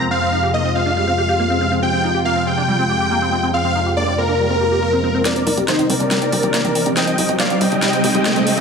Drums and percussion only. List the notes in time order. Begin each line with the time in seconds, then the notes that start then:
5.25 snare, closed hi-hat
5.36 closed hi-hat
5.47 open hi-hat
5.58 closed hi-hat
5.68 snare, closed hi-hat
5.79 closed hi-hat
5.90 open hi-hat
6.00 closed hi-hat
6.11 snare, closed hi-hat
6.22 closed hi-hat
6.32 open hi-hat
6.43 closed hi-hat
6.54 snare, closed hi-hat
6.65 closed hi-hat
6.75 open hi-hat
6.86 closed hi-hat
6.97 snare, closed hi-hat
7.07 closed hi-hat
7.18 open hi-hat
7.29 closed hi-hat
7.40 snare, closed hi-hat
7.50 closed hi-hat
7.61 open hi-hat
7.72 closed hi-hat
7.82 snare, closed hi-hat
7.93 closed hi-hat
8.04 open hi-hat
8.15 closed hi-hat
8.25 snare, closed hi-hat
8.36 closed hi-hat
8.47 open hi-hat
8.57 closed hi-hat